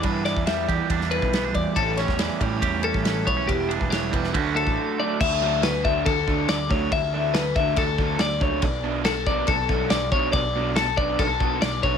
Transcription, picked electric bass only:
\new Staff \with { instrumentName = "Picked electric bass" } { \clef bass \time 4/4 \key d \major \tempo 4 = 140 g,8. e,8. e,16 r16 e,8. b,,8. e,16 r16 | a,,8. e,8 r16 a,8 e,8. a,,8. b,,8 | e,,8. e,,8. e,,8 d,8. a,,16 r4 | d,2 d,4 d,8 d,8 |
d,2 d,4 d,8 cis,8 | b,,2 b,,4 b,,8 b,,8 | b,,2 b,,4 b,,8 b,,8 | }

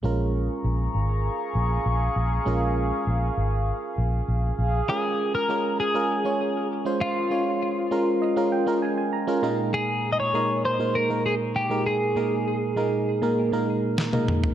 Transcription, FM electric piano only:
\new Staff \with { instrumentName = "FM electric piano" } { \time 4/4 \key bes \minor \tempo 4 = 99 << { r1 | r1 | r1 | r4. ees''16 f''16 g''8 aes''16 aes''16 bes''8 bes''8 |
r1 | r1 | } \\ { <aes des' f' bes'>1 | <aes des' f' bes'>2.~ <aes des' f' bes'>8 r8 | <aes des' f' bes'>8. r16 <aes des' f' bes'>8 r16 <aes des' f' bes'>16 r16 <aes des' f' des''>8. r16 <aes des' f' c''>8 r16 | <aes des' f' des''>8. r16 <aes des' f' bes'>8 r16 <aes des' f' bes'>16 r16 <aes des' f' bes'>8. r16 <aes des' f' bes'>16 <bes, aes bes ees' bes'>8~ |
<bes, aes bes ees' bes'>8. r16 <bes, aes bes ees' bes'>8 r16 <bes, aes bes ees' bes'>16 r16 <bes, aes bes ees' bes'>8. r16 <bes, aes bes ees' bes'>8 r16 | <bes, aes bes ees' bes'>8. r16 <bes, aes bes ees' bes'>8 r16 <bes, aes bes ees' bes'>16 r16 <bes, aes bes ees' bes'>8. r16 <bes, aes bes ees' bes'>8 r16 | } >> }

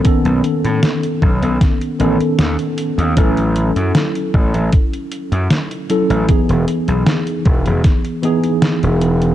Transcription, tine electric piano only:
\new Staff \with { instrumentName = "Tine electric piano" } { \time 4/4 \key e \major \tempo 4 = 77 <dis b cis' a'>2~ <dis b cis' a'>8 <dis b cis' a'>4. | <fis cis' e' a'>2.~ <fis cis' e' a'>8 <fis cis' e' a'>8 | <e b dis' gis'>2~ <e b dis' gis'>8 <e b dis' gis'>4. | }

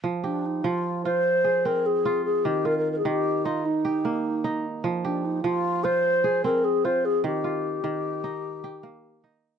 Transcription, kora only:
<<
  \new Staff \with { instrumentName = "Kora" } { \time 12/8 \key f \minor \tempo 4. = 100 r8 g'4. r4. aes'4. r4 | r8 f'4. r4. g'4. r4 | r8 g'4. r4. aes'4. r4 | r8 f'4. r4. g'4. r4 | }
  \new Staff \with { instrumentName = "Kora" } { \time 12/8 \key f \minor f4 r8 f4 f'4 r8 c'4 f'4 | ees4 r8 ees4 ees'4 r8 bes4 ees'4 | f4 r8 f4 f'4 r8 c'4 f'4 | ees4 r8 ees4 ees'4 r8 bes4 ees'4 | }
>>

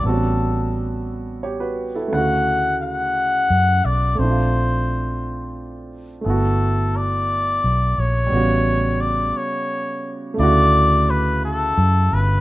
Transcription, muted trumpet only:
\new Staff \with { instrumentName = "Muted trumpet" } { \time 6/8 \key d \major \tempo 4. = 58 a'4 r2 | fis''4 fis''4. d''8 | c''2 r4 | a'4 d''4. cis''8~ |
cis''4 d''8 cis''4 r8 | d''4 b'8 a'4 b'8 | }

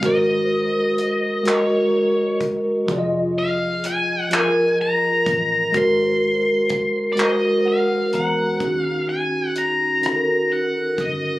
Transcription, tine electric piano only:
\new Staff \with { instrumentName = "Tine electric piano" } { \time 6/8 \key aes \mixolydian \tempo 4. = 42 << { r2. | r2. | r2 ges''8 bes''8 | r2. | } \\ { <aes ges' bes' c''>4. <aes ges' bes' ees''>4. | <f f' aes' d'' ees''>4. <f f' aes' bes'>4. | <aes ges' bes' c''>4. <aes ges' bes' c''>4. | <ees des' ees' ges' aes'>4. <ees des' ees' ges' a' bes'>4. | } >> }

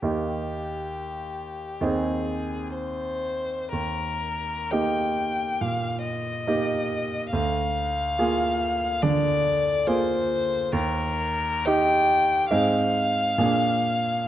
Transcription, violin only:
\new Staff \with { instrumentName = "Violin" } { \time 4/4 \key ees \major \tempo 4 = 69 g'2 aes'4 c''4 | bes'4 g''4 f''8 ees''4. | f''2 d''4 c''4 | bes'4 g''4 f''2 | }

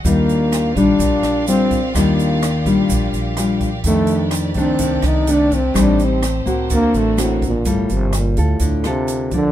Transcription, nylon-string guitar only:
\new Staff \with { instrumentName = "Nylon-string guitar" } { \time 4/4 \key g \minor \tempo 4 = 126 << { <g d' f'>4. <g d' f'>4. <g d' f'>8 r8 | <g d' f'>4 r8 <g d' f'>4. <g d' f'>8 r8 | <ees a d'>4. <ees a d'>4. <ees a d'>8 r8 | <g c' ees'>4 r8 <bes c' fis'>4. <bes c' fis'>8 r8 |
<bes f' a'>4 r8 <f' a'>4 <bes f' a'>4 <f bes d'>8 | } \\ { ees2 bes,2 | ees2 bes,2 | f,2 c2 | a,2 d2 |
g2 d2 | } >> }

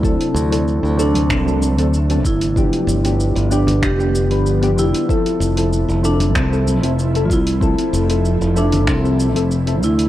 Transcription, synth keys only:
\new Staff \with { instrumentName = "Synth keys" } { \time 4/4 \key f \lydian \tempo 4 = 95 <fis c' d' a'>8. <fis c' d' a'>8. <fis c' d' a'>8. <fis c' d' a'>8 <fis c' d' a'>16 r16 <fis c' d' a'>16 r8 | <f b d' g'>8. <f b d' g'>8. <f b d' g'>8. <f b d' g'>8 <f b d' b'>8 <f b d' g'>16 <f b d' g'>8 | <f c' e' a'>8. <f c' e' a'>8. <f c' e' a'>8. <f c' e' a'>8 <f c' e' a'>16 r16 <f c' e' a'>16 r8 | <f c' e' a'>8. <f c' e' a'>8. <f c' e' a'>8. <f c' e' a'>8 <f c' e' a'>16 r16 <f c' e' a'>16 r8 | }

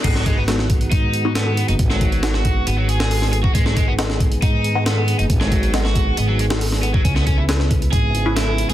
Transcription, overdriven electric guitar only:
\new Staff \with { instrumentName = "Overdriven electric guitar" } { \time 4/4 \key gis \minor \tempo 4 = 137 gis16 fis16 gis16 b16 r4 dis'4 b8. dis'16 | r16 fis4 fis'8. b16 fis16 gis'4 gis'16 fis'16 | gis16 fis16 gis16 b16 r4 dis'4 b8. dis'16 | r16 fis4 fis'8. b16 fis16 gis16 r8. b16 fis16 |
cis'16 b16 cis'16 e'16 r4 gis'4 e'8. gis'16 | }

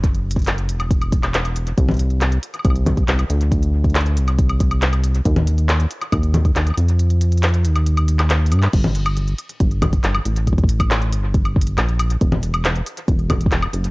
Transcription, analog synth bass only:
\new Staff \with { instrumentName = "Analog synth bass" } { \clef bass \time 4/4 \key g \minor \tempo 4 = 138 fis,,4. e,,2~ e,,8 | c,4. r8 c,4 c,8 d,8~ | d,4. c,2~ c,8 | ees,4. r8 ees,4 ees,8 f,8~ |
f,4. ees,2 g,8 | g,,4. r8 g,,4 g,,8 a,,8~ | a,,4. g,,4. bes,,4 | e,,4. r8 e,,4 e,,8 fis,,8 | }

